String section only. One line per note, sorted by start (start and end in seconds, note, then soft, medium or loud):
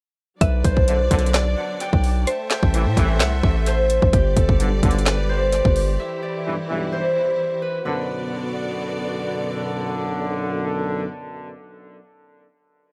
0.41 2.25 F#3 medium
0.41 2.25 D4 medium
0.41 2.25 D5 medium
2.27 4.11 A3 medium
2.27 4.11 A4 medium
2.27 4.11 C5 medium
2.27 4.11 E5 medium
4.13 5.97 G3 medium
4.13 7.82 G4 medium
4.13 5.97 D5 medium
5.99 7.83 E3 medium
5.99 7.83 E4 medium
7.85 11.04 B2 medium
7.85 11.04 B3 medium
7.85 11.04 F#4 medium
7.85 11.04 D5 medium